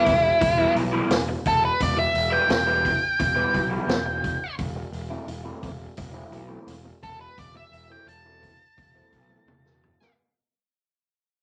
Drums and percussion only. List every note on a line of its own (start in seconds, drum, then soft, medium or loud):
0.06 kick medium
0.06 open hi-hat medium
0.41 kick loud
0.41 open hi-hat medium
0.76 open hi-hat soft
1.10 snare loud
1.10 open hi-hat medium
1.46 kick medium
1.46 open hi-hat soft
1.81 kick loud
1.81 open hi-hat medium
2.15 open hi-hat soft
2.50 snare loud
2.50 open hi-hat medium
2.85 kick medium
2.85 open hi-hat soft
3.20 kick medium
3.20 open hi-hat medium
3.54 kick medium
3.54 open hi-hat soft
3.89 snare loud
3.89 open hi-hat medium
4.24 kick medium
4.24 open hi-hat soft
4.59 kick loud
4.59 open hi-hat medium
4.93 open hi-hat soft
5.28 open hi-hat medium
5.63 kick medium
5.63 open hi-hat soft
5.97 kick medium
5.97 open hi-hat medium
6.33 open hi-hat soft
6.68 open hi-hat medium
7.03 kick medium
7.03 open hi-hat soft
7.38 kick medium
7.38 open hi-hat medium
7.73 open hi-hat soft
8.08 open hi-hat medium
8.43 kick medium
8.43 open hi-hat soft
8.78 kick loud
8.78 open hi-hat medium
9.13 kick medium
9.13 open hi-hat soft
9.48 high tom medium
9.66 snare soft
9.83 mid tom medium
10.01 snare medium